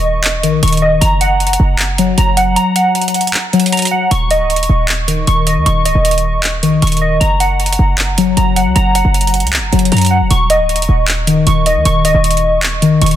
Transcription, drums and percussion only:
0.24 clap, closed hi-hat
0.43 closed hi-hat
0.63 closed hi-hat
0.68 closed hi-hat
0.72 closed hi-hat
0.77 closed hi-hat
1.02 closed hi-hat
1.21 closed hi-hat
1.40 closed hi-hat
1.47 closed hi-hat
1.53 closed hi-hat
1.79 clap, closed hi-hat
1.98 closed hi-hat
2.18 closed hi-hat
2.37 closed hi-hat
2.56 closed hi-hat
2.76 closed hi-hat
2.95 closed hi-hat
3.02 closed hi-hat
3.08 closed hi-hat
3.14 closed hi-hat
3.21 closed hi-hat
3.27 closed hi-hat
3.34 clap, closed hi-hat
3.53 closed hi-hat
3.60 closed hi-hat
3.66 closed hi-hat
3.72 closed hi-hat
3.77 closed hi-hat
3.79 closed hi-hat
3.82 closed hi-hat
3.85 closed hi-hat
3.87 closed hi-hat
4.11 closed hi-hat
4.31 closed hi-hat
4.50 closed hi-hat
4.56 closed hi-hat
4.63 closed hi-hat
4.89 clap, closed hi-hat
5.08 closed hi-hat
5.27 closed hi-hat
5.47 closed hi-hat
5.66 closed hi-hat
5.86 closed hi-hat
6.05 closed hi-hat
6.11 closed hi-hat
6.18 closed hi-hat
6.44 clap, closed hi-hat
6.63 closed hi-hat
6.82 closed hi-hat
6.87 closed hi-hat
6.92 closed hi-hat
6.97 closed hi-hat
7.21 closed hi-hat
7.40 closed hi-hat
7.60 closed hi-hat
7.66 closed hi-hat
7.73 closed hi-hat
7.98 clap, closed hi-hat
8.18 closed hi-hat
8.37 closed hi-hat
8.56 closed hi-hat
8.76 closed hi-hat
8.95 closed hi-hat
9.14 closed hi-hat
9.21 closed hi-hat
9.27 closed hi-hat
9.34 closed hi-hat
9.40 closed hi-hat
9.47 closed hi-hat
9.53 clap, closed hi-hat
9.73 closed hi-hat
9.79 closed hi-hat
9.85 closed hi-hat
9.92 closed hi-hat
9.97 closed hi-hat
9.98 closed hi-hat
10.01 closed hi-hat
10.05 closed hi-hat
10.06 closed hi-hat
10.31 closed hi-hat
10.50 closed hi-hat
10.69 closed hi-hat
10.76 closed hi-hat
10.82 closed hi-hat
11.08 clap, closed hi-hat
11.27 closed hi-hat
11.47 closed hi-hat
11.66 closed hi-hat
11.85 closed hi-hat
12.05 closed hi-hat
12.24 closed hi-hat
12.31 closed hi-hat
12.37 closed hi-hat
12.63 clap, closed hi-hat
12.82 closed hi-hat
13.02 closed hi-hat
13.06 closed hi-hat
13.11 closed hi-hat

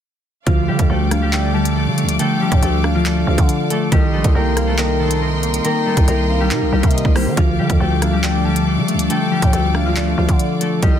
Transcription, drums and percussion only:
0.47 kick, closed hi-hat
0.79 kick, closed hi-hat
1.11 cross-stick, closed hi-hat
1.33 clap, closed hi-hat
1.65 closed hi-hat
1.98 closed hi-hat
2.09 closed hi-hat
2.19 closed hi-hat
2.52 kick, closed hi-hat
2.63 closed hi-hat
2.84 cross-stick
3.06 clap, closed hi-hat
3.38 kick, closed hi-hat
3.49 closed hi-hat
3.70 closed hi-hat
3.92 kick, closed hi-hat
4.24 kick, closed hi-hat
4.57 cross-stick, closed hi-hat
4.78 clap, closed hi-hat
5.11 closed hi-hat
5.43 closed hi-hat
5.54 closed hi-hat
5.65 closed hi-hat
5.97 kick, closed hi-hat
6.08 closed hi-hat
6.51 clap, closed hi-hat
6.83 kick, closed hi-hat
6.91 closed hi-hat
6.98 closed hi-hat
7.05 kick
7.16 cross-stick, open hi-hat
7.37 kick, closed hi-hat
7.70 kick, closed hi-hat
8.02 cross-stick, closed hi-hat
8.24 clap, closed hi-hat
8.56 closed hi-hat
8.88 closed hi-hat
8.99 closed hi-hat
9.10 closed hi-hat
9.42 kick, closed hi-hat
9.53 closed hi-hat
9.75 cross-stick
9.96 clap, closed hi-hat
10.29 kick, closed hi-hat
10.39 closed hi-hat
10.61 closed hi-hat
10.83 kick, closed hi-hat

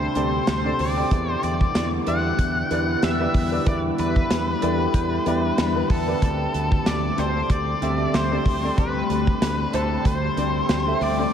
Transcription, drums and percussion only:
0.15 closed hi-hat
0.47 snare, closed hi-hat
0.79 open hi-hat
1.11 kick, closed hi-hat
1.43 closed hi-hat
1.61 kick
1.75 snare, closed hi-hat
2.07 closed hi-hat
2.39 kick, closed hi-hat
2.71 closed hi-hat
3.02 snare, closed hi-hat
3.34 kick, open hi-hat
3.66 kick, closed hi-hat
3.98 closed hi-hat
4.16 kick
4.31 snare, closed hi-hat
4.62 closed hi-hat
4.94 kick, closed hi-hat
5.26 closed hi-hat
5.58 snare, closed hi-hat
5.90 kick, open hi-hat
6.22 kick, closed hi-hat
6.54 closed hi-hat
6.72 kick
6.86 snare, closed hi-hat
7.18 closed hi-hat
7.50 kick, closed hi-hat
7.82 closed hi-hat
8.14 snare, closed hi-hat
8.46 kick, open hi-hat
8.78 kick, closed hi-hat
9.10 closed hi-hat
9.27 kick
9.42 snare, closed hi-hat
9.73 closed hi-hat
10.05 kick, closed hi-hat
10.37 closed hi-hat
10.69 snare, closed hi-hat
11.01 open hi-hat

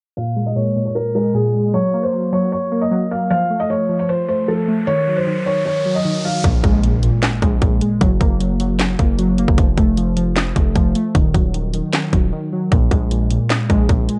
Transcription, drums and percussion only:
6.44 kick, closed hi-hat
6.64 kick, closed hi-hat
6.83 closed hi-hat
7.03 closed hi-hat
7.23 snare, clap, closed hi-hat
7.42 kick, closed hi-hat
7.62 kick, closed hi-hat
7.81 closed hi-hat
8.01 kick, closed hi-hat
8.21 kick, closed hi-hat
8.40 closed hi-hat
8.60 closed hi-hat
8.79 snare, clap, closed hi-hat
8.99 kick, closed hi-hat
9.19 closed hi-hat
9.38 closed hi-hat
9.48 kick
9.58 kick, closed hi-hat
9.78 kick, closed hi-hat
9.97 closed hi-hat
10.17 closed hi-hat
10.36 snare, clap, closed hi-hat
10.56 kick, closed hi-hat
10.75 kick, closed hi-hat
10.95 closed hi-hat
11.15 kick, closed hi-hat
11.34 kick, closed hi-hat
11.54 closed hi-hat
11.74 closed hi-hat
11.93 snare, clap, closed hi-hat
12.13 kick, closed hi-hat
12.72 kick, closed hi-hat
12.91 kick, closed hi-hat
13.11 closed hi-hat
13.31 closed hi-hat
13.50 snare, clap, closed hi-hat
13.70 kick, closed hi-hat
13.89 kick, closed hi-hat
14.09 closed hi-hat

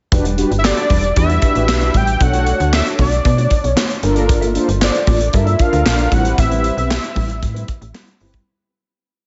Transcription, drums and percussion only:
0.12 kick, closed hi-hat
0.25 closed hi-hat
0.38 closed hi-hat
0.52 closed hi-hat
0.65 snare, clap
0.78 closed hi-hat
0.90 kick, open hi-hat
1.03 closed hi-hat
1.16 kick, closed hi-hat
1.30 closed hi-hat
1.42 kick, closed hi-hat
1.55 closed hi-hat
1.69 snare, clap
1.81 closed hi-hat
1.94 kick, closed hi-hat
2.07 closed hi-hat
2.20 kick, closed hi-hat
2.33 closed hi-hat
2.46 closed hi-hat
2.60 closed hi-hat
2.73 snare, clap
2.86 closed hi-hat
2.99 kick, open hi-hat
3.12 closed hi-hat
3.25 kick, closed hi-hat
3.38 closed hi-hat
3.50 kick, closed hi-hat
3.64 closed hi-hat
3.77 snare, clap
3.90 closed hi-hat
4.03 closed hi-hat
4.16 closed hi-hat
4.29 kick, closed hi-hat
4.42 closed hi-hat
4.55 closed hi-hat
4.69 closed hi-hat
4.82 snare, clap
4.95 closed hi-hat
5.07 kick, open hi-hat
5.21 closed hi-hat
5.33 kick, closed hi-hat
5.47 closed hi-hat
5.59 kick, closed hi-hat
5.73 closed hi-hat
5.86 snare, clap
5.99 closed hi-hat
6.12 kick, closed hi-hat
6.25 closed hi-hat
6.38 kick, closed hi-hat
6.51 closed hi-hat
6.64 closed hi-hat
6.78 closed hi-hat
6.91 snare, clap
7.04 closed hi-hat
7.16 kick, open hi-hat
7.30 closed hi-hat
7.43 kick, closed hi-hat
7.56 closed hi-hat
7.68 kick, closed hi-hat
7.82 closed hi-hat
7.95 snare, clap
8.07 closed hi-hat
8.20 open hi-hat
8.34 kick, closed hi-hat

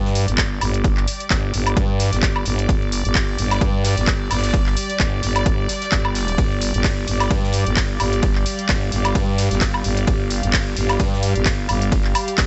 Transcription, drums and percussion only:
0.05 snare
0.15 open hi-hat, ride
0.28 closed hi-hat
0.38 kick, snare, clap, closed hi-hat, ride
0.61 open hi-hat, ride, high woodblock
0.74 closed hi-hat
0.84 kick, closed hi-hat, ride
0.97 clap
1.08 open hi-hat, ride
1.20 closed hi-hat
1.30 kick, snare, clap, closed hi-hat, ride
1.54 snare, open hi-hat, ride
1.66 closed hi-hat, high woodblock
1.77 kick, closed hi-hat, ride
1.99 snare, open hi-hat, ride
2.12 snare, closed hi-hat
2.22 kick, snare, clap, closed hi-hat, ride
2.36 high woodblock
2.45 open hi-hat, ride
2.59 closed hi-hat
2.69 kick, closed hi-hat, ride
2.82 ride
2.92 open hi-hat, ride
3.05 closed hi-hat
3.15 kick, snare, clap, closed hi-hat, open hi-hat
3.28 ride
3.38 open hi-hat, ride
3.50 snare, closed hi-hat, high woodblock
3.61 kick, closed hi-hat, ride
3.84 snare, open hi-hat
3.97 closed hi-hat, ride
4.07 kick, snare, clap, closed hi-hat, ride
4.30 snare, open hi-hat, high woodblock
4.37 snare, open hi-hat
4.43 snare, closed hi-hat, open hi-hat
4.48 snare, open hi-hat
4.54 kick, closed hi-hat, ride
4.66 clap
4.77 open hi-hat, ride
4.90 closed hi-hat
4.99 kick, snare, clap, closed hi-hat, ride
5.23 snare, open hi-hat, ride
5.36 closed hi-hat, high woodblock
5.46 kick, closed hi-hat, ride
5.69 snare, open hi-hat, ride
5.81 snare, closed hi-hat
5.91 kick, snare, clap, closed hi-hat, ride
6.05 high woodblock
6.14 snare, open hi-hat
6.28 closed hi-hat, ride
6.38 kick, closed hi-hat, ride
6.52 ride
6.61 open hi-hat, ride
6.74 closed hi-hat
6.84 kick, snare, clap, closed hi-hat, open hi-hat, ride
6.97 ride
7.07 open hi-hat, ride
7.20 snare, closed hi-hat, high woodblock
7.31 kick, closed hi-hat, ride
7.43 snare
7.52 open hi-hat, ride
7.66 closed hi-hat
7.77 kick, snare, clap, closed hi-hat, ride
8.00 open hi-hat, ride, high woodblock
8.13 closed hi-hat
8.22 kick, closed hi-hat, ride
8.35 clap
8.46 open hi-hat, ride
8.59 closed hi-hat
8.69 kick, snare, clap, closed hi-hat, ride
8.92 snare, open hi-hat, ride
9.05 closed hi-hat, high woodblock
9.15 kick, closed hi-hat, ride
9.38 snare, open hi-hat, ride
9.51 snare, closed hi-hat
9.61 kick, snare, clap, closed hi-hat, ride
9.74 high woodblock
9.84 open hi-hat, ride
9.97 closed hi-hat
10.07 kick, closed hi-hat, ride
10.20 ride
10.30 open hi-hat, ride
10.43 closed hi-hat
10.53 kick, snare, clap, closed hi-hat, open hi-hat, ride
10.66 ride
10.76 open hi-hat, ride
10.89 snare, closed hi-hat, high woodblock
11.00 kick, closed hi-hat, ride
11.13 snare
11.23 open hi-hat, ride
11.36 closed hi-hat
11.46 kick, snare, clap, closed hi-hat, ride
11.69 open hi-hat, ride, high woodblock
11.82 closed hi-hat
11.92 kick, closed hi-hat, ride
12.05 clap
12.15 open hi-hat, ride, high woodblock
12.28 closed hi-hat
12.38 kick, snare, clap, closed hi-hat, ride

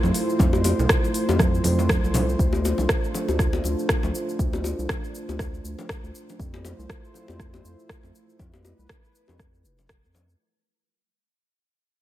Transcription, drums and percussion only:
0.03 low bongo, high conga, shaker
0.14 open hi-hat, muted conga, shaker
0.30 shaker
0.39 kick, low bongo, high conga, shaker
0.53 high bongo, shaker
0.64 open hi-hat, high bongo, muted conga, shaker
0.79 low conga, shaker
0.89 kick, cross-stick, low bongo, shaker
1.04 muted conga, shaker
1.14 open hi-hat, shaker
1.29 high bongo, low bongo, shaker
1.39 kick, cross-stick, muted conga, high conga, low conga, shaker
1.55 shaker
1.64 open hi-hat, high conga, low conga, shaker
1.79 low bongo, muted conga, shaker
1.89 kick, cross-stick, high conga, shaker
2.04 shaker
2.14 mid tom, open hi-hat, low bongo, muted conga, high conga, low conga, shaker
2.29 shaker
2.39 kick, shaker
2.53 high bongo, shaker
2.65 high bongo, shaker
2.78 low bongo, shaker
2.89 kick, cross-stick, shaker
3.04 shaker
3.14 low bongo, shaker
3.29 high bongo, shaker
3.39 kick, cross-stick, shaker
3.53 high bongo, shaker
3.64 low bongo, shaker
3.79 shaker
3.89 kick, cross-stick, shaker
4.03 low bongo, shaker
4.15 shaker
4.29 shaker
4.39 kick, shaker
4.53 high bongo, low bongo, shaker
4.64 high bongo, shaker
4.79 shaker
4.89 kick, cross-stick, low bongo, shaker
5.04 shaker
5.15 shaker
5.29 high bongo, shaker
5.39 kick, cross-stick, low bongo, shaker
5.54 shaker
5.65 shaker
5.79 low bongo, shaker
5.89 kick, cross-stick, shaker
6.04 shaker
6.15 shaker
6.29 low bongo, shaker
6.39 kick, shaker
6.54 high bongo, shaker
6.65 high bongo, low bongo, shaker
6.80 shaker
6.89 kick, cross-stick, shaker
7.05 shaker
7.14 low bongo, shaker
7.28 high bongo, shaker
7.39 kick, cross-stick, shaker
7.54 high bongo, low bongo, shaker
7.65 shaker
7.79 shaker
7.89 kick, cross-stick, shaker
8.03 low bongo, shaker
8.15 shaker
8.29 shaker
8.39 kick, low bongo, shaker
8.54 high bongo, shaker
8.65 high bongo, shaker
8.79 shaker
8.89 kick, cross-stick, low bongo, shaker
9.04 shaker
9.15 shaker
9.28 high bongo, low bongo, shaker
9.39 kick, cross-stick, shaker
9.54 shaker
9.65 shaker
9.79 low bongo, shaker
9.89 kick, cross-stick, shaker
10.04 shaker
10.15 low bongo, shaker
10.30 shaker

